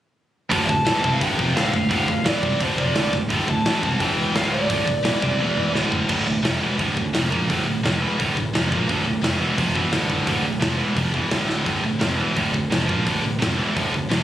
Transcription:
0.51 picked electric bass D1, distorted electric guitar D2 A2 D3, kick, open hi-hat
0.67 picked electric bass D1, distorted electric guitar D2 A2, lead electric guitar A5, kick
0.85 picked electric bass E1, distorted electric guitar E2 B2 E3, snare, open hi-hat
1.04 picked electric bass C2, distorted electric guitar C3 G3 C4, kick
1.14 lead electric guitar F5
1.20 picked electric bass D1, distorted electric guitar D2 A2 D3, lead electric guitar G5, kick, open hi-hat
1.37 picked electric bass F1, distorted electric guitar F2 C3 F3, kick
1.55 picked electric bass D1, distorted electric guitar D2 A2 D3, lead electric guitar F5, snare, open hi-hat
1.73 picked electric bass D1, distorted electric guitar D2 A2, lead electric guitar F5, kick
1.90 picked electric bass D1, distorted electric guitar D2 A2 D3, kick, open hi-hat
2.08 picked electric bass D1, distorted electric guitar D2 A2, kick
2.24 picked electric bass E1, distorted electric guitar E2 B2 E3, lead electric guitar D5, snare, open hi-hat
2.43 picked electric bass C2, distorted electric guitar C3 G3 C4, kick
2.60 picked electric bass D1, distorted electric guitar D2 A2 D3, lead electric guitar C5, kick, open hi-hat
2.78 picked electric bass F1, distorted electric guitar F2 C3 F3, lead electric guitar D5, kick
2.94 picked electric bass D1, distorted electric guitar D2 A2 D3, snare, open hi-hat
3.13 picked electric bass D1, distorted electric guitar D2 A2, kick, snare
3.30 picked electric bass D1, distorted electric guitar D2 A2 D3, kick, open hi-hat
3.48 picked electric bass D1, distorted electric guitar D2 A2, lead electric guitar A5, kick
3.65 picked electric bass E1, distorted electric guitar E2 B2 E3, snare, open hi-hat
3.82 picked electric bass C2, distorted electric guitar C3 G3 C4, kick
3.99 picked electric bass E1, distorted electric guitar E2 B2 E3, lead electric guitar G5, kick, open hi-hat
4.35 picked electric bass D1, distorted electric guitar D2 A2 D3, lead electric guitar F5, snare, open hi-hat
4.53 lead electric guitar D5
4.69 picked electric bass D1, distorted electric guitar D2 A2 D3, kick, open hi-hat
4.86 picked electric bass D1, distorted electric guitar D2 A2, kick
5.03 picked electric bass E1, distorted electric guitar E2 B2 E3, snare, open hi-hat
5.21 picked electric bass C2, distorted electric guitar C3 G3 C4, kick
5.38 picked electric bass E1, distorted electric guitar E2 B2 E3, high tom
5.57 mid tom
5.73 picked electric bass D1, distorted electric guitar D2 A2 D3, snare
5.92 kick
6.09 picked electric bass D1, distorted electric guitar D2 A2 D3, kick, crash
6.25 picked electric bass D1, distorted electric guitar D2 A2
6.43 picked electric bass F1, distorted electric guitar F2 C3 F3, snare, open hi-hat
6.61 picked electric bass E1, distorted electric guitar E2 B2 E3
6.79 picked electric bass D1, distorted electric guitar D2 A2 D3, kick, open hi-hat
6.95 picked electric bass D1, distorted electric guitar D2 A2, kick
7.13 picked electric bass F1, distorted electric guitar F2 C3 F3, snare, open hi-hat
7.32 picked electric bass A#1, distorted electric guitar A#2 F3 A#3, kick
7.50 picked electric bass D1, distorted electric guitar D2 A2 D3, kick, open hi-hat
7.66 picked electric bass D1, distorted electric guitar D2 A2
7.83 picked electric bass F1, distorted electric guitar F2 C3 F3, snare, open hi-hat
8.01 picked electric bass E1, distorted electric guitar E2 B2 E3
8.19 picked electric bass D1, distorted electric guitar D2 A2 D3, kick, open hi-hat
8.37 picked electric bass D1, distorted electric guitar D2 A2, kick
8.54 picked electric bass F1, distorted electric guitar F2 C3 F3, snare, open hi-hat
8.70 picked electric bass A#1, distorted electric guitar A#2 F3 A#3, kick
8.87 picked electric bass D1, distorted electric guitar D2 A2 D3, kick, open hi-hat
9.04 picked electric bass D1, distorted electric guitar D2 A2
9.22 picked electric bass F1, distorted electric guitar F2 C3 F3, snare, open hi-hat
9.39 picked electric bass E1, distorted electric guitar E2 B2 E3
9.57 picked electric bass F1, distorted electric guitar F2 C3 F3, kick, open hi-hat
9.74 picked electric bass E1, distorted electric guitar E2 B2 E3, kick
9.91 picked electric bass D1, distorted electric guitar D2 A2 D3, snare, open hi-hat
10.10 kick
10.27 picked electric bass D1, distorted electric guitar D2 A2 D3, kick, open hi-hat
10.43 picked electric bass D1, distorted electric guitar D2 A2
10.60 picked electric bass F1, distorted electric guitar F2 C3 F3, snare, open hi-hat
10.78 picked electric bass E1, distorted electric guitar E2 B2 E3
10.96 picked electric bass F1, distorted electric guitar F2 C3 F3, kick, open hi-hat
11.13 picked electric bass E1, distorted electric guitar E2 B2 E3, kick
11.31 picked electric bass D1, distorted electric guitar D2 A2 D3, snare, open hi-hat
11.50 snare
11.66 picked electric bass D1, distorted electric guitar D2 A2 D3, kick, open hi-hat
11.83 picked electric bass D1, distorted electric guitar D2 A2
12.00 picked electric bass F1, distorted electric guitar F2 C3 F3, snare, open hi-hat
12.18 picked electric bass E1, distorted electric guitar E2 B2 E3
12.35 picked electric bass D1, distorted electric guitar D2 A2 D3, kick, open hi-hat
12.54 picked electric bass D1, distorted electric guitar D2 A2, kick
12.71 picked electric bass F1, distorted electric guitar F2 C3 F3, snare, open hi-hat
12.88 picked electric bass A#1, distorted electric guitar A#2 F3 A#3, kick
13.07 picked electric bass D1, distorted electric guitar D2 A2 D3, kick, open hi-hat
13.23 picked electric bass D1, distorted electric guitar D2 A2
13.41 picked electric bass F1, distorted electric guitar F2 C3 F3, snare, open hi-hat
13.57 picked electric bass E1, distorted electric guitar E2 B2 E3
13.76 picked electric bass D1, distorted electric guitar D2 A2 D3, kick, open hi-hat
13.93 picked electric bass D1, distorted electric guitar D2 A2, kick
14.09 picked electric bass F1, distorted electric guitar F2 C3 F3, snare, open hi-hat

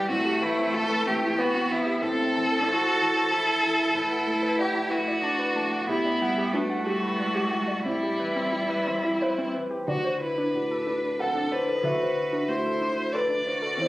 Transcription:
Already playing: upright piano A2 G3 F#4 B4
0.08 upright piano A2, cello A3, synth pluck C4, violin F#4
0.25 synth pluck G4
0.42 upright piano E3, violin E4, synth pluck B4
0.58 synth pluck C4
0.74 upright piano E4, synth pluck E4, violin A4
0.89 synth pluck B4
1.06 upright piano E3, synth pluck C4, violin G4
1.23 synth pluck E4
1.38 cello B3, violin F#4, upright piano B4, synth pluck B4
1.54 synth pluck C4
1.69 upright piano E3, violin E4, synth pluck B4
1.86 synth pluck G4
2.02 upright piano A2, cello C4, synth pluck A4, violin A4
2.18 synth pluck E5
2.35 upright piano E3, synth pluck A5
2.52 synth pluck A4
2.68 upright piano E4, cello F#4, synth pluck C5
2.84 synth pluck A5
3.00 upright piano E3, synth pluck A4
3.16 synth pluck C5
3.31 cello E4, synth pluck A5
3.47 synth pluck A4
3.64 upright piano E3, synth pluck A5
3.80 synth pluck E5
3.94 upright piano A2, cello E4, synth pluck B4
4.11 synth pluck F#5
4.27 upright piano A3, synth pluck A5
4.43 synth pluck B4
4.59 violin G4, synth pluck D5, upright piano F#5
4.75 synth pluck A5
4.90 upright piano A3, violin F#4, synth pluck B4
5.08 synth pluck D5
5.22 cello D4, upright piano D5, synth pluck A5
5.39 synth pluck B4
5.54 upright piano A3, synth pluck A5
5.73 synth pluck F#5
5.87 upright piano A2, cello B3, violin E4, synth pluck G4
6.05 synth pluck D5
6.21 upright piano G3, synth pluck F#5
6.38 synth pluck G4
6.52 cello A3, violin D4, upright piano F#4, synth pluck B4
6.70 synth pluck F#5
6.86 upright piano G3, violin F#4, synth pluck G4
7.02 synth pluck B4
7.18 upright piano D5, synth pluck F#5
7.35 synth pluck G4
7.51 upright piano G3, synth pluck F#5
7.68 synth pluck D5
7.85 upright piano A2, cello G3, synth pluck C4, violin E4
8.03 synth pluck G4
8.20 upright piano E3, synth pluck B4
8.36 synth pluck C4
8.53 synth pluck E4, upright piano E4
8.69 synth pluck B4
8.87 upright piano E3, synth pluck C4
9.04 synth pluck E4
9.22 synth pluck B4, upright piano C5
9.38 synth pluck C4
9.54 upright piano E3, synth pluck B4
9.71 synth pluck G4
9.87 upright piano D2 D5, synth pluck D4, cello F#4, violin F#4
10.04 synth pluck C5
10.21 cello E4, violin B4
10.38 synth pluck D4
10.53 upright piano A2, cello D4, synth pluck F#4
10.71 synth pluck A4
10.87 synth pluck D4
11.19 cello C4, synth pluck A4, violin A4, upright piano F#5
11.35 synth pluck D4
11.52 cello D4, violin B4, synth pluck C5
11.68 synth pluck A4
11.83 upright piano D2 E5, synth pluck D4, cello F#4
12.00 synth pluck C5
12.33 synth pluck D4
12.48 upright piano A3, cello E4, synth pluck F#4, violin C5
12.66 synth pluck A4
12.82 synth pluck D4
13.13 cello D4, synth pluck A4, upright piano B4, violin D5
13.30 synth pluck D4
13.46 cello F#4, synth pluck C5
13.62 synth pluck A4
13.77 upright piano E2, synth pluck C4
13.82 cello E4, upright piano C5

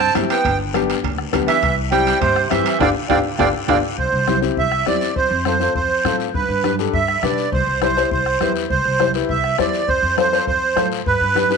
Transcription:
Already playing: tenor saxophone C4, accordion A5
0.00 bombo rim
0.15 upright bass G2, upright piano C4 E4 G4, bombo rim, high conga, high timbale, low timbale, short guiro
0.30 tenor saxophone B3, accordion G5, high timbale, short guiro
0.45 upright bass G1, bombo low, high conga, low conga, high timbale, long guiro
0.74 upright piano B3 D4 G4, bombo rim, high conga, high timbale, short guiro
0.90 high timbale, short guiro
1.04 upright bass D2, bombo low, high conga, low conga, high timbale, long guiro
1.18 bombo rim
1.33 upright bass D2, upright piano B3 D4 G4, bombo rim, high conga, low conga, high timbale, short guiro
1.48 tenor saxophone E3, accordion E5, high timbale, short guiro
1.62 upright bass C2, bombo low, high conga, high timbale, long guiro
1.92 tenor saxophone G3, upright piano C4 E4 G4, accordion G5, bombo rim, high conga, high timbale, short guiro
2.07 high timbale, short guiro
2.20 upright bass G2, tenor saxophone C3, accordion C5, bombo low, high conga, low conga, high timbale, long guiro
2.36 bombo rim
2.50 upright bass G2, tenor saxophone E3, upright piano C4 E4 G4, accordion E5, bombo rim, high conga, high timbale, short guiro
2.66 high timbale, short guiro
2.80 upright bass G1, tenor saxophone D3, upright piano D4 F4 G4, accordion D5 F5 G5, bombo low, low conga, high timbale, long guiro
3.09 upright bass G1, tenor saxophone D3, upright piano D4 F4 G4, accordion D5 F5 G5, bombo low, low conga, high timbale
3.39 upright bass G1, tenor saxophone D3, upright piano D4 F4 G4, accordion D5 F5 G5, bombo low, low conga, high timbale
3.68 upright bass G1, tenor saxophone D3, upright piano D4 F4 G4, accordion D5 F5 G5, bombo low, low conga, high timbale, long guiro
3.98 upright bass C2, accordion C5, bombo low, high conga, long guiro
4.12 upright bass C2
4.27 upright piano C4 E4 G4, bombo rim, high conga, short guiro
4.42 upright piano C4 E4 G4, short guiro
4.57 upright bass C2, accordion E5, bombo low, high conga, long guiro
4.72 bombo rim
4.86 upright piano C4 E4 G4, accordion D5, bombo rim, high conga, short guiro
5.01 short guiro
5.16 upright bass F2, accordion C5, bombo low, high conga, long guiro
5.31 upright bass F2
5.45 upright piano C4 F4 A4, accordion C5, bombo rim, high conga, short guiro
5.60 upright piano C4 F4 A4, short guiro
5.75 upright bass F2, accordion C5, bombo low, high conga, long guiro
6.04 upright bass A2, upright piano C4 F4 A4, bombo rim, high conga, short guiro
6.20 short guiro
6.34 upright bass G2, accordion B4, bombo low, high conga, long guiro
6.49 upright bass G2
6.64 upright piano D4 G4 B4, bombo rim, high conga, short guiro
6.79 upright piano D4 G4 A4, short guiro
6.93 upright bass G2, accordion E5, bombo low, high conga, long guiro
7.08 bombo rim
7.23 upright bass B2, upright piano D4 G4 B4, accordion D5, bombo rim, high conga, short guiro
7.38 short guiro
7.52 upright bass C2, accordion C5, bombo low, high conga, long guiro
7.67 upright bass C2
7.82 upright piano E4 G4 C5, accordion C5, bombo rim, high conga, short guiro
7.97 upright piano E4 G4 C5, short guiro
8.11 upright bass C2, accordion C5, bombo low, high conga, long guiro
8.26 bombo rim
8.40 upright bass E2, upright piano E4 G4 B4, bombo rim, high conga, short guiro
8.56 short guiro
8.70 upright bass C2, accordion C5, bombo low, high conga, long guiro
8.85 upright bass C2
8.99 upright piano E4 G4 C5, bombo rim, high conga, short guiro
9.14 upright piano E4 G4 B4, short guiro
9.29 upright bass C2, accordion E5, bombo low, high conga, long guiro
9.44 bombo rim
9.58 upright bass E2, upright piano E4 G4 C5, accordion D5, bombo rim, high conga, short guiro
9.74 short guiro
9.88 upright bass F2, accordion C5, bombo low, high conga, long guiro
10.03 upright bass F2
10.17 upright piano F4 A4 C5, accordion C5, bombo rim, high conga, short guiro
10.32 upright piano F4 A4 C5, short guiro
10.47 upright bass F2, accordion C5, bombo low, high conga, long guiro
10.76 upright bass A2, upright piano F4 A4 C5, bombo rim, high conga, short guiro
10.92 short guiro
11.06 upright bass G2, accordion B4, bombo low, high conga, long guiro
11.21 upright bass G2
11.35 upright piano D4 G4 B4, bombo rim, high conga, short guiro
11.50 upright piano D4 G4 B4, short guiro

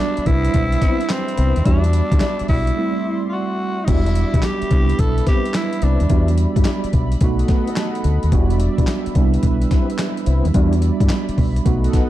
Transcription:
Already playing: analog synth pad G3 D5 E5 B5, tine electric piano G3 B3 D4 F#4, tenor saxophone D4
0.17 muted fingered electric bass stroke, closed hi-hat
0.26 fingered electric bass C2, analog synth pad G3 C4, tine electric piano G3 D4 E4 B4, tenor saxophone E4, kick, closed hi-hat
0.45 closed hi-hat
0.54 fingered electric bass B1, kick, closed hi-hat
0.72 closed hi-hat
0.82 tonewheel organ B3 C4 E4, kick, snare, closed hi-hat
1.01 closed hi-hat
1.09 tenor saxophone C4, snare, clap, closed hi-hat
1.28 closed hi-hat
1.37 fingered electric bass C2, tonewheel organ B3 C4 E4, closed hi-hat
1.56 fingered electric bass D#2, closed hi-hat
1.65 fingered electric bass E2, tine electric piano G3 B3 D4 F#4, tonewheel organ G3 D4 E4, tenor saxophone D4, analog synth pad D5 E5, kick, closed hi-hat
1.84 closed hi-hat
1.93 closed hi-hat
2.12 fingered electric bass D2, tonewheel organ G3 D4 E4, kick, closed hi-hat
2.20 snare, clap, closed hi-hat
2.39 muted fingered electric bass stroke, closed hi-hat
2.48 fingered electric bass B1, tenor saxophone E4, kick, open hi-hat
2.67 closed hi-hat
2.76 tine electric piano G3 A3 C4 E4, analog synth pad D5 C6
3.29 tenor saxophone F4 F#4
3.84 fingered electric bass E1, analog synth pad G3 D5 E5 B5, tonewheel organ G3 D4 E4, tine electric piano G3 B3, tenor saxophone D#4, kick, closed hi-hat, crash
3.89 tine electric piano D4 F#4, tenor saxophone E4
4.06 closed hi-hat
4.15 closed hi-hat
4.34 fingered electric bass B1, tonewheel organ G3 D4 E4, kick, closed hi-hat
4.42 tenor saxophone G4, snare, clap, closed hi-hat
4.62 muted fingered electric bass stroke, closed hi-hat
4.70 fingered electric bass C2, tine electric piano G3 B3 D4 E4, analog synth pad B4 B5, kick, closed hi-hat
4.89 closed hi-hat
4.99 fingered electric bass B1, tenor saxophone A4, kick, closed hi-hat
5.18 closed hi-hat
5.27 tonewheel organ B3 C4 E4, tenor saxophone G4, kick, snare, closed hi-hat
5.45 closed hi-hat
5.54 tenor saxophone E4, snare, clap, closed hi-hat
5.73 closed hi-hat
5.82 fingered electric bass C2, tonewheel organ B3 C4 E4, tenor saxophone D4, closed hi-hat
6.00 fingered electric bass D#2, closed hi-hat
6.09 fingered electric bass E2, tine electric piano G3 B3 D4 F#4, analog synth pad G3 D5, tonewheel organ G3 D4 E4, kick, closed hi-hat
6.28 closed hi-hat
6.38 closed hi-hat
6.56 fingered electric bass G2, tonewheel organ G3 D4 E4, kick, closed hi-hat
6.65 snare, clap, closed hi-hat
6.84 muted fingered electric bass stroke, closed hi-hat
6.93 fingered electric bass B1, kick, closed hi-hat
7.12 closed hi-hat
7.21 fingered electric bass B1, tine electric piano A3 B3 D#4 F#4, analog synth pad A4 D#5 F#5, kick, closed hi-hat
7.39 closed hi-hat
7.48 tonewheel organ A3 B3 D#4, kick, snare, closed hi-hat
7.67 closed hi-hat
7.76 snare, clap, closed hi-hat
7.95 closed hi-hat
8.04 fingered electric bass D2, closed hi-hat
8.23 fingered electric bass D#2, closed hi-hat
8.32 fingered electric bass E1, tonewheel organ G3 D4 E4, analog synth pad G3 D5 E5, tine electric piano G3 B3 D4 F#4, kick, closed hi-hat
8.50 closed hi-hat
8.60 closed hi-hat
8.78 fingered electric bass B1, tonewheel organ G3 D4 E4, kick, closed hi-hat
8.87 snare, clap, closed hi-hat
9.06 muted fingered electric bass stroke, closed hi-hat
9.15 fingered electric bass C2, tine electric piano G3 B3 D4 E4, analog synth pad B4, kick, closed hi-hat
9.34 closed hi-hat
9.43 fingered electric bass B1, kick, closed hi-hat
9.62 closed hi-hat
9.71 tonewheel organ B3 C4 E4, kick, snare, closed hi-hat
9.90 closed hi-hat
9.98 snare, clap, closed hi-hat
10.17 closed hi-hat
10.26 fingered electric bass C2, tonewheel organ B3 C4 E4, closed hi-hat
10.45 fingered electric bass D#2, closed hi-hat
10.54 fingered electric bass E2, tine electric piano G3 B3 D4 F#4, tonewheel organ G3 D4 E4, analog synth pad D5 B5, kick, closed hi-hat
10.73 closed hi-hat
10.82 closed hi-hat
11.00 fingered electric bass G2, tonewheel organ G3 D4 E4, kick, closed hi-hat
11.09 snare, clap, closed hi-hat
11.29 muted fingered electric bass stroke, closed hi-hat
11.38 fingered electric bass B1, kick, open hi-hat
11.56 closed hi-hat
11.65 fingered electric bass B1, tine electric piano A3 B3 D#4 F#4, analog synth pad A4 D#5 F#5, kick, closed hi-hat
11.84 closed hi-hat
11.93 tonewheel organ A3 B3 D#4, kick, snare, closed hi-hat

